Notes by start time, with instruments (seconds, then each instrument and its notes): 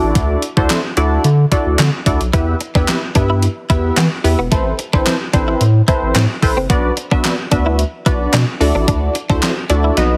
Already playing: analog polysynth D4 E4 F#4 A4 D5
0.02 analog synth bass A1
0.15 analog synth bass D2, kick, closed hi-hat
0.42 closed hi-hat
0.57 analog synth bass D2, analog polysynth D4 E4 F#4 A4 C5, kick
0.70 snare, clap, closed hi-hat
0.97 analog synth bass D2, analog polysynth D4 E4 F#4 A4 D5, closed hi-hat
1.24 analog synth bass D3, closed hi-hat
1.51 analog polysynth D4 E4 F#4 A4 D5, kick, closed hi-hat
1.66 analog synth bass D2
1.79 analog synth bass D3, snare, clap, closed hi-hat
2.06 analog synth bass D2, analog polysynth D4 E4 F#4 A4 D5, kick, closed hi-hat
2.21 analog synth bass B1, closed hi-hat
2.33 analog synth bass E2, analog polysynth B3 E4 G4 B4 E5, clean electric guitar E4, kick, closed hi-hat
2.61 muted clean electric guitar stroke, closed hi-hat
2.75 analog synth bass E2, analog polysynth B3 E4 G4 B4 E5, clean electric guitar D4, kick
2.88 muted clean electric guitar stroke, snare, clap, closed hi-hat
3.15 analog synth bass G2, analog polysynth B3 E4 G4 B4 E5, clean electric guitar D4, kick, closed hi-hat
3.30 clean electric guitar E4
3.42 closed hi-hat
3.70 analog synth bass E2, analog polysynth B3 E4 G4 B4 E5, clean electric guitar E4, kick, closed hi-hat
3.97 analog synth bass E3, clean electric guitar B3, snare, clap, closed hi-hat
4.24 analog synth bass E2, analog polysynth B3 E4 G4 B4 E5, muted clean electric guitar stroke, open hi-hat
4.39 analog synth bass E1, clean electric guitar B3
4.51 analog synth bass A1, clean electric guitar A3, analog polysynth C4 E4 A4 B4 C5, kick, closed hi-hat
4.79 muted clean electric guitar stroke, closed hi-hat
4.93 analog synth bass A1, analog polysynth C4 E4 A4 B4 C5, clean electric guitar D4, kick
5.06 muted clean electric guitar stroke, snare, clap, closed hi-hat
5.33 analog synth bass A1, analog polysynth C4 E4 A4 B4 C5, clean electric guitar D4, kick, closed hi-hat
5.48 clean electric guitar E4
5.61 analog synth bass A2, closed hi-hat
5.88 analog polysynth C4 E4 A4 B4 C5, clean electric guitar E4, kick, closed hi-hat
6.02 analog synth bass A1
6.15 analog synth bass A2, clean electric guitar C4, snare, clap, closed hi-hat
6.42 analog synth bass A1, analog polysynth C4 E4 A4 B4 C5, muted clean electric guitar stroke, kick, open hi-hat
6.57 analog synth bass F#1, clean electric guitar C4
6.70 analog synth bass B1, analog polysynth B3 D4 F#4 B4 D5, clean electric guitar B3, kick, closed hi-hat
6.97 muted clean electric guitar stroke, closed hi-hat
7.11 analog synth bass B1, analog polysynth B3 D4 F#4 B4 E5, clean electric guitar D4, kick
7.24 muted clean electric guitar stroke, snare, clap, closed hi-hat
7.51 analog synth bass D2, analog polysynth B3 D4 F#4 B4 E5, clean electric guitar D4, kick, closed hi-hat
7.66 clean electric guitar E4
7.79 closed hi-hat
8.06 analog synth bass B1, analog polysynth B3 D4 F#4 B4 D5, clean electric guitar E4, kick, closed hi-hat
8.33 analog synth bass B2, clean electric guitar D4, snare, clap, closed hi-hat
8.60 analog synth bass D2, analog polysynth D4 E4 F#4 A4 D5, muted clean electric guitar stroke, open hi-hat
8.75 analog synth bass A1, clean electric guitar D4
8.88 analog synth bass D2, clean electric guitar D4, kick, closed hi-hat
9.15 muted clean electric guitar stroke, closed hi-hat
9.29 analog synth bass D2, analog polysynth D4 E4 F#4 A4 C5, clean electric guitar D4, kick
9.42 muted clean electric guitar stroke, snare, clap, closed hi-hat
9.70 analog synth bass D2, analog polysynth D4 E4 F#4 A4 D5, clean electric guitar D4, closed hi-hat
9.84 clean electric guitar E4
9.97 analog synth bass B1, analog polysynth B3 D#4 F#4 B4 D#5, snare, closed hi-hat